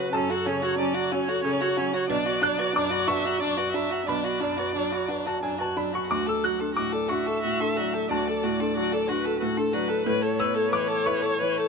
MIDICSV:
0, 0, Header, 1, 5, 480
1, 0, Start_track
1, 0, Tempo, 657174
1, 102, Time_signature, 6, 3, 24, 8
1, 2982, Tempo, 670391
1, 5862, Tempo, 655022
1, 7782, Tempo, 694444
1, 8442, End_track
2, 0, Start_track
2, 0, Title_t, "Viola"
2, 0, Program_c, 0, 41
2, 0, Note_on_c, 0, 71, 74
2, 95, Note_on_c, 0, 69, 78
2, 106, Note_off_c, 0, 71, 0
2, 335, Note_on_c, 0, 73, 86
2, 346, Note_off_c, 0, 69, 0
2, 570, Note_on_c, 0, 74, 77
2, 581, Note_off_c, 0, 73, 0
2, 815, Note_on_c, 0, 73, 93
2, 826, Note_off_c, 0, 74, 0
2, 1525, Note_off_c, 0, 73, 0
2, 1530, Note_on_c, 0, 74, 102
2, 2248, Note_on_c, 0, 76, 101
2, 2259, Note_off_c, 0, 74, 0
2, 2483, Note_on_c, 0, 74, 90
2, 2494, Note_off_c, 0, 76, 0
2, 2719, Note_off_c, 0, 74, 0
2, 2724, Note_on_c, 0, 76, 88
2, 2972, Note_on_c, 0, 74, 82
2, 2983, Note_off_c, 0, 76, 0
2, 4066, Note_off_c, 0, 74, 0
2, 5144, Note_on_c, 0, 76, 84
2, 5858, Note_on_c, 0, 74, 64
2, 5869, Note_off_c, 0, 76, 0
2, 6582, Note_on_c, 0, 71, 76
2, 6593, Note_off_c, 0, 74, 0
2, 6819, Note_on_c, 0, 69, 64
2, 6830, Note_off_c, 0, 71, 0
2, 7054, Note_on_c, 0, 71, 77
2, 7065, Note_off_c, 0, 69, 0
2, 7296, Note_on_c, 0, 73, 98
2, 7307, Note_off_c, 0, 71, 0
2, 8442, Note_off_c, 0, 73, 0
2, 8442, End_track
3, 0, Start_track
3, 0, Title_t, "Marimba"
3, 0, Program_c, 1, 12
3, 109, Note_on_c, 1, 66, 85
3, 179, Note_off_c, 1, 66, 0
3, 228, Note_on_c, 1, 69, 62
3, 298, Note_off_c, 1, 69, 0
3, 351, Note_on_c, 1, 69, 69
3, 420, Note_off_c, 1, 69, 0
3, 463, Note_on_c, 1, 66, 86
3, 536, Note_off_c, 1, 66, 0
3, 709, Note_on_c, 1, 78, 67
3, 780, Note_off_c, 1, 78, 0
3, 818, Note_on_c, 1, 66, 99
3, 892, Note_off_c, 1, 66, 0
3, 941, Note_on_c, 1, 69, 69
3, 1014, Note_off_c, 1, 69, 0
3, 1057, Note_on_c, 1, 69, 73
3, 1131, Note_off_c, 1, 69, 0
3, 1183, Note_on_c, 1, 66, 100
3, 1255, Note_off_c, 1, 66, 0
3, 1302, Note_on_c, 1, 78, 80
3, 1373, Note_off_c, 1, 78, 0
3, 1417, Note_on_c, 1, 73, 74
3, 1490, Note_off_c, 1, 73, 0
3, 1532, Note_on_c, 1, 71, 107
3, 1606, Note_off_c, 1, 71, 0
3, 1648, Note_on_c, 1, 74, 75
3, 1723, Note_off_c, 1, 74, 0
3, 1771, Note_on_c, 1, 74, 82
3, 1846, Note_off_c, 1, 74, 0
3, 1893, Note_on_c, 1, 71, 111
3, 1966, Note_off_c, 1, 71, 0
3, 2133, Note_on_c, 1, 83, 79
3, 2207, Note_off_c, 1, 83, 0
3, 2250, Note_on_c, 1, 71, 104
3, 2325, Note_off_c, 1, 71, 0
3, 2370, Note_on_c, 1, 74, 74
3, 2445, Note_off_c, 1, 74, 0
3, 2497, Note_on_c, 1, 74, 73
3, 2570, Note_off_c, 1, 74, 0
3, 2614, Note_on_c, 1, 71, 96
3, 2688, Note_off_c, 1, 71, 0
3, 2741, Note_on_c, 1, 83, 69
3, 2813, Note_off_c, 1, 83, 0
3, 2863, Note_on_c, 1, 78, 73
3, 2935, Note_off_c, 1, 78, 0
3, 2990, Note_on_c, 1, 71, 93
3, 3060, Note_off_c, 1, 71, 0
3, 3106, Note_on_c, 1, 74, 59
3, 3177, Note_off_c, 1, 74, 0
3, 3231, Note_on_c, 1, 74, 65
3, 3301, Note_off_c, 1, 74, 0
3, 3349, Note_on_c, 1, 71, 85
3, 3420, Note_off_c, 1, 71, 0
3, 3590, Note_on_c, 1, 83, 61
3, 3662, Note_off_c, 1, 83, 0
3, 3711, Note_on_c, 1, 71, 76
3, 3783, Note_off_c, 1, 71, 0
3, 3831, Note_on_c, 1, 74, 56
3, 3903, Note_off_c, 1, 74, 0
3, 3953, Note_on_c, 1, 74, 54
3, 4025, Note_off_c, 1, 74, 0
3, 4072, Note_on_c, 1, 71, 79
3, 4145, Note_off_c, 1, 71, 0
3, 4199, Note_on_c, 1, 83, 52
3, 4270, Note_off_c, 1, 83, 0
3, 4316, Note_on_c, 1, 78, 52
3, 4388, Note_off_c, 1, 78, 0
3, 4438, Note_on_c, 1, 62, 69
3, 4509, Note_off_c, 1, 62, 0
3, 4557, Note_on_c, 1, 66, 50
3, 4628, Note_off_c, 1, 66, 0
3, 4673, Note_on_c, 1, 66, 59
3, 4745, Note_off_c, 1, 66, 0
3, 4792, Note_on_c, 1, 62, 79
3, 4864, Note_off_c, 1, 62, 0
3, 5029, Note_on_c, 1, 74, 52
3, 5100, Note_off_c, 1, 74, 0
3, 5142, Note_on_c, 1, 62, 69
3, 5215, Note_off_c, 1, 62, 0
3, 5263, Note_on_c, 1, 66, 54
3, 5336, Note_off_c, 1, 66, 0
3, 5379, Note_on_c, 1, 66, 55
3, 5453, Note_off_c, 1, 66, 0
3, 5507, Note_on_c, 1, 62, 80
3, 5578, Note_off_c, 1, 62, 0
3, 5625, Note_on_c, 1, 74, 54
3, 5697, Note_off_c, 1, 74, 0
3, 5746, Note_on_c, 1, 69, 56
3, 5817, Note_off_c, 1, 69, 0
3, 5861, Note_on_c, 1, 62, 76
3, 5934, Note_off_c, 1, 62, 0
3, 5978, Note_on_c, 1, 66, 51
3, 6053, Note_off_c, 1, 66, 0
3, 6100, Note_on_c, 1, 66, 59
3, 6174, Note_off_c, 1, 66, 0
3, 6227, Note_on_c, 1, 62, 83
3, 6299, Note_off_c, 1, 62, 0
3, 6464, Note_on_c, 1, 74, 61
3, 6537, Note_off_c, 1, 74, 0
3, 6585, Note_on_c, 1, 62, 86
3, 6656, Note_off_c, 1, 62, 0
3, 6702, Note_on_c, 1, 66, 64
3, 6774, Note_off_c, 1, 66, 0
3, 6816, Note_on_c, 1, 66, 61
3, 6889, Note_off_c, 1, 66, 0
3, 6939, Note_on_c, 1, 62, 93
3, 7010, Note_off_c, 1, 62, 0
3, 7058, Note_on_c, 1, 74, 68
3, 7129, Note_off_c, 1, 74, 0
3, 7183, Note_on_c, 1, 69, 66
3, 7253, Note_off_c, 1, 69, 0
3, 7299, Note_on_c, 1, 69, 96
3, 7370, Note_off_c, 1, 69, 0
3, 7417, Note_on_c, 1, 73, 69
3, 7490, Note_off_c, 1, 73, 0
3, 7538, Note_on_c, 1, 73, 73
3, 7611, Note_off_c, 1, 73, 0
3, 7658, Note_on_c, 1, 69, 99
3, 7732, Note_off_c, 1, 69, 0
3, 7904, Note_on_c, 1, 81, 73
3, 7973, Note_off_c, 1, 81, 0
3, 8014, Note_on_c, 1, 69, 89
3, 8086, Note_off_c, 1, 69, 0
3, 8135, Note_on_c, 1, 73, 71
3, 8208, Note_off_c, 1, 73, 0
3, 8257, Note_on_c, 1, 73, 62
3, 8331, Note_off_c, 1, 73, 0
3, 8385, Note_on_c, 1, 69, 84
3, 8442, Note_off_c, 1, 69, 0
3, 8442, End_track
4, 0, Start_track
4, 0, Title_t, "Violin"
4, 0, Program_c, 2, 40
4, 0, Note_on_c, 2, 66, 57
4, 85, Note_off_c, 2, 66, 0
4, 89, Note_on_c, 2, 61, 73
4, 219, Note_on_c, 2, 66, 64
4, 230, Note_off_c, 2, 61, 0
4, 342, Note_on_c, 2, 61, 62
4, 353, Note_off_c, 2, 66, 0
4, 455, Note_on_c, 2, 66, 63
4, 466, Note_off_c, 2, 61, 0
4, 569, Note_off_c, 2, 66, 0
4, 574, Note_on_c, 2, 61, 69
4, 690, Note_on_c, 2, 66, 67
4, 701, Note_off_c, 2, 61, 0
4, 820, Note_on_c, 2, 61, 67
4, 831, Note_off_c, 2, 66, 0
4, 942, Note_on_c, 2, 66, 70
4, 953, Note_off_c, 2, 61, 0
4, 1049, Note_off_c, 2, 66, 0
4, 1053, Note_on_c, 2, 61, 68
4, 1177, Note_on_c, 2, 66, 68
4, 1187, Note_off_c, 2, 61, 0
4, 1294, Note_on_c, 2, 61, 71
4, 1305, Note_off_c, 2, 66, 0
4, 1415, Note_on_c, 2, 66, 68
4, 1426, Note_off_c, 2, 61, 0
4, 1530, Note_off_c, 2, 66, 0
4, 1534, Note_on_c, 2, 62, 82
4, 1651, Note_on_c, 2, 66, 72
4, 1662, Note_off_c, 2, 62, 0
4, 1766, Note_on_c, 2, 62, 77
4, 1777, Note_off_c, 2, 66, 0
4, 1889, Note_on_c, 2, 66, 74
4, 1900, Note_off_c, 2, 62, 0
4, 2008, Note_off_c, 2, 66, 0
4, 2013, Note_on_c, 2, 62, 78
4, 2122, Note_on_c, 2, 66, 77
4, 2133, Note_off_c, 2, 62, 0
4, 2247, Note_on_c, 2, 62, 73
4, 2258, Note_off_c, 2, 66, 0
4, 2377, Note_on_c, 2, 66, 74
4, 2388, Note_off_c, 2, 62, 0
4, 2487, Note_off_c, 2, 66, 0
4, 2491, Note_on_c, 2, 62, 71
4, 2612, Note_on_c, 2, 66, 63
4, 2623, Note_off_c, 2, 62, 0
4, 2733, Note_on_c, 2, 62, 65
4, 2744, Note_off_c, 2, 66, 0
4, 2853, Note_on_c, 2, 66, 58
4, 2864, Note_off_c, 2, 62, 0
4, 2962, Note_off_c, 2, 66, 0
4, 2966, Note_on_c, 2, 62, 68
4, 3094, Note_on_c, 2, 66, 60
4, 3105, Note_off_c, 2, 62, 0
4, 3214, Note_on_c, 2, 62, 62
4, 3224, Note_off_c, 2, 66, 0
4, 3333, Note_on_c, 2, 66, 63
4, 3344, Note_off_c, 2, 62, 0
4, 3458, Note_off_c, 2, 66, 0
4, 3462, Note_on_c, 2, 62, 60
4, 3582, Note_on_c, 2, 66, 54
4, 3593, Note_off_c, 2, 62, 0
4, 3698, Note_on_c, 2, 62, 56
4, 3709, Note_off_c, 2, 66, 0
4, 3822, Note_on_c, 2, 66, 56
4, 3832, Note_off_c, 2, 62, 0
4, 3940, Note_off_c, 2, 66, 0
4, 3944, Note_on_c, 2, 62, 49
4, 4058, Note_on_c, 2, 66, 51
4, 4069, Note_off_c, 2, 62, 0
4, 4187, Note_on_c, 2, 62, 50
4, 4198, Note_off_c, 2, 66, 0
4, 4307, Note_on_c, 2, 66, 48
4, 4318, Note_off_c, 2, 62, 0
4, 4420, Note_off_c, 2, 66, 0
4, 4424, Note_on_c, 2, 66, 62
4, 4543, Note_on_c, 2, 69, 53
4, 4554, Note_off_c, 2, 66, 0
4, 4668, Note_on_c, 2, 66, 48
4, 4679, Note_off_c, 2, 69, 0
4, 4783, Note_on_c, 2, 69, 50
4, 4794, Note_off_c, 2, 66, 0
4, 4885, Note_off_c, 2, 69, 0
4, 4890, Note_on_c, 2, 66, 57
4, 5011, Note_on_c, 2, 69, 56
4, 5021, Note_off_c, 2, 66, 0
4, 5132, Note_on_c, 2, 66, 52
4, 5142, Note_off_c, 2, 69, 0
4, 5259, Note_on_c, 2, 69, 55
4, 5269, Note_off_c, 2, 66, 0
4, 5370, Note_off_c, 2, 69, 0
4, 5374, Note_on_c, 2, 66, 51
4, 5502, Note_on_c, 2, 69, 51
4, 5513, Note_off_c, 2, 66, 0
4, 5620, Note_on_c, 2, 66, 56
4, 5631, Note_off_c, 2, 69, 0
4, 5740, Note_on_c, 2, 69, 50
4, 5750, Note_off_c, 2, 66, 0
4, 5852, Note_off_c, 2, 69, 0
4, 5857, Note_on_c, 2, 66, 59
4, 5989, Note_on_c, 2, 69, 53
4, 6000, Note_off_c, 2, 66, 0
4, 6105, Note_on_c, 2, 66, 52
4, 6116, Note_off_c, 2, 69, 0
4, 6226, Note_on_c, 2, 69, 55
4, 6237, Note_off_c, 2, 66, 0
4, 6341, Note_off_c, 2, 69, 0
4, 6345, Note_on_c, 2, 66, 64
4, 6462, Note_on_c, 2, 69, 59
4, 6473, Note_off_c, 2, 66, 0
4, 6579, Note_on_c, 2, 66, 62
4, 6590, Note_off_c, 2, 69, 0
4, 6705, Note_on_c, 2, 69, 60
4, 6716, Note_off_c, 2, 66, 0
4, 6809, Note_off_c, 2, 69, 0
4, 6813, Note_on_c, 2, 66, 58
4, 6936, Note_on_c, 2, 69, 57
4, 6947, Note_off_c, 2, 66, 0
4, 7053, Note_on_c, 2, 66, 63
4, 7064, Note_off_c, 2, 69, 0
4, 7166, Note_on_c, 2, 69, 60
4, 7177, Note_off_c, 2, 66, 0
4, 7288, Note_off_c, 2, 69, 0
4, 7293, Note_on_c, 2, 71, 78
4, 7413, Note_on_c, 2, 69, 66
4, 7424, Note_off_c, 2, 71, 0
4, 7537, Note_on_c, 2, 71, 63
4, 7548, Note_off_c, 2, 69, 0
4, 7648, Note_on_c, 2, 69, 69
4, 7659, Note_off_c, 2, 71, 0
4, 7764, Note_off_c, 2, 69, 0
4, 7768, Note_on_c, 2, 71, 66
4, 7887, Note_on_c, 2, 69, 68
4, 7897, Note_off_c, 2, 71, 0
4, 8011, Note_on_c, 2, 71, 65
4, 8021, Note_off_c, 2, 69, 0
4, 8126, Note_on_c, 2, 69, 65
4, 8136, Note_off_c, 2, 71, 0
4, 8245, Note_off_c, 2, 69, 0
4, 8249, Note_on_c, 2, 71, 62
4, 8372, Note_on_c, 2, 69, 60
4, 8383, Note_off_c, 2, 71, 0
4, 8442, Note_off_c, 2, 69, 0
4, 8442, End_track
5, 0, Start_track
5, 0, Title_t, "Grand piano"
5, 0, Program_c, 3, 0
5, 0, Control_c, 3, 64, 127
5, 0, Note_on_c, 3, 42, 69
5, 0, Note_on_c, 3, 49, 56
5, 0, Note_on_c, 3, 54, 61
5, 0, Note_on_c, 3, 66, 56
5, 0, Note_on_c, 3, 85, 80
5, 0, Note_on_c, 3, 86, 95
5, 0, Note_on_c, 3, 90, 103
5, 77, Note_off_c, 3, 42, 0
5, 94, Note_on_c, 3, 81, 89
5, 104, Note_on_c, 3, 42, 70
5, 116, Control_c, 3, 64, 0
5, 117, Note_off_c, 3, 49, 0
5, 121, Note_off_c, 3, 85, 0
5, 121, Note_off_c, 3, 86, 0
5, 123, Note_off_c, 3, 66, 0
5, 123, Note_off_c, 3, 90, 0
5, 228, Control_c, 3, 64, 127
5, 248, Note_off_c, 3, 54, 0
5, 337, Note_on_c, 3, 49, 61
5, 581, Note_on_c, 3, 54, 66
5, 725, Note_off_c, 3, 49, 0
5, 820, Note_on_c, 3, 66, 60
5, 967, Note_off_c, 3, 54, 0
5, 1056, Note_on_c, 3, 49, 58
5, 1205, Note_off_c, 3, 66, 0
5, 1269, Note_off_c, 3, 81, 0
5, 1303, Note_on_c, 3, 54, 68
5, 1441, Note_off_c, 3, 49, 0
5, 1512, Note_off_c, 3, 42, 0
5, 1533, Note_on_c, 3, 35, 84
5, 1541, Note_off_c, 3, 54, 0
5, 1556, Control_c, 3, 64, 0
5, 1684, Control_c, 3, 64, 127
5, 1774, Note_on_c, 3, 90, 122
5, 1779, Note_on_c, 3, 54, 73
5, 1999, Note_off_c, 3, 90, 0
5, 2017, Note_on_c, 3, 86, 112
5, 2019, Note_on_c, 3, 42, 74
5, 2162, Note_off_c, 3, 54, 0
5, 2241, Note_off_c, 3, 86, 0
5, 2249, Note_on_c, 3, 85, 121
5, 2267, Note_on_c, 3, 66, 72
5, 2402, Note_off_c, 3, 42, 0
5, 2499, Note_on_c, 3, 42, 63
5, 2647, Note_off_c, 3, 66, 0
5, 2737, Note_on_c, 3, 54, 66
5, 2886, Note_off_c, 3, 42, 0
5, 2949, Note_off_c, 3, 85, 0
5, 2950, Note_off_c, 3, 35, 0
5, 2982, Note_on_c, 3, 35, 67
5, 2983, Note_on_c, 3, 83, 90
5, 2997, Control_c, 3, 64, 0
5, 3112, Control_c, 3, 64, 127
5, 3125, Note_off_c, 3, 54, 0
5, 3223, Note_on_c, 3, 42, 59
5, 3466, Note_on_c, 3, 54, 56
5, 3610, Note_off_c, 3, 42, 0
5, 3679, Note_off_c, 3, 83, 0
5, 3703, Note_on_c, 3, 66, 52
5, 3832, Note_on_c, 3, 81, 69
5, 3854, Note_off_c, 3, 54, 0
5, 3943, Note_off_c, 3, 81, 0
5, 3945, Note_on_c, 3, 80, 73
5, 3948, Note_on_c, 3, 42, 46
5, 4061, Note_off_c, 3, 80, 0
5, 4077, Note_on_c, 3, 81, 68
5, 4094, Note_off_c, 3, 66, 0
5, 4188, Note_off_c, 3, 81, 0
5, 4191, Note_on_c, 3, 54, 51
5, 4191, Note_on_c, 3, 83, 74
5, 4305, Note_off_c, 3, 83, 0
5, 4320, Note_on_c, 3, 85, 74
5, 4338, Note_off_c, 3, 42, 0
5, 4406, Note_off_c, 3, 35, 0
5, 4429, Note_off_c, 3, 85, 0
5, 4432, Note_on_c, 3, 86, 85
5, 4434, Note_off_c, 3, 54, 0
5, 4437, Note_on_c, 3, 38, 60
5, 4450, Control_c, 3, 64, 0
5, 4545, Note_off_c, 3, 86, 0
5, 4562, Note_on_c, 3, 88, 80
5, 4569, Control_c, 3, 64, 127
5, 4670, Note_off_c, 3, 88, 0
5, 4670, Note_on_c, 3, 90, 82
5, 4673, Note_on_c, 3, 54, 50
5, 4893, Note_off_c, 3, 90, 0
5, 4903, Note_on_c, 3, 86, 81
5, 4918, Note_on_c, 3, 45, 50
5, 5054, Note_off_c, 3, 54, 0
5, 5128, Note_off_c, 3, 86, 0
5, 5138, Note_on_c, 3, 85, 85
5, 5153, Note_on_c, 3, 66, 51
5, 5295, Note_off_c, 3, 45, 0
5, 5388, Note_on_c, 3, 45, 46
5, 5531, Note_off_c, 3, 66, 0
5, 5627, Note_on_c, 3, 54, 52
5, 5768, Note_off_c, 3, 45, 0
5, 5828, Note_off_c, 3, 85, 0
5, 5835, Note_off_c, 3, 38, 0
5, 5861, Note_on_c, 3, 38, 61
5, 5866, Note_on_c, 3, 81, 76
5, 5876, Control_c, 3, 64, 0
5, 5976, Control_c, 3, 64, 127
5, 6010, Note_off_c, 3, 54, 0
5, 6106, Note_on_c, 3, 45, 52
5, 6348, Note_on_c, 3, 54, 53
5, 6490, Note_off_c, 3, 45, 0
5, 6586, Note_on_c, 3, 66, 58
5, 6729, Note_off_c, 3, 54, 0
5, 6827, Note_on_c, 3, 45, 54
5, 6965, Note_off_c, 3, 66, 0
5, 7032, Note_off_c, 3, 81, 0
5, 7063, Note_on_c, 3, 54, 61
5, 7204, Note_off_c, 3, 45, 0
5, 7267, Note_off_c, 3, 38, 0
5, 7297, Note_on_c, 3, 45, 74
5, 7299, Note_off_c, 3, 54, 0
5, 7311, Control_c, 3, 64, 0
5, 7450, Control_c, 3, 64, 127
5, 7539, Note_on_c, 3, 59, 65
5, 7541, Note_on_c, 3, 88, 105
5, 7767, Note_off_c, 3, 88, 0
5, 7782, Note_on_c, 3, 52, 65
5, 7785, Note_on_c, 3, 86, 104
5, 7922, Note_off_c, 3, 59, 0
5, 8001, Note_off_c, 3, 86, 0
5, 8014, Note_on_c, 3, 85, 100
5, 8020, Note_on_c, 3, 64, 66
5, 8160, Note_off_c, 3, 52, 0
5, 8258, Note_on_c, 3, 52, 55
5, 8407, Note_off_c, 3, 64, 0
5, 8442, Note_off_c, 3, 45, 0
5, 8442, Note_off_c, 3, 52, 0
5, 8442, Note_off_c, 3, 85, 0
5, 8442, End_track
0, 0, End_of_file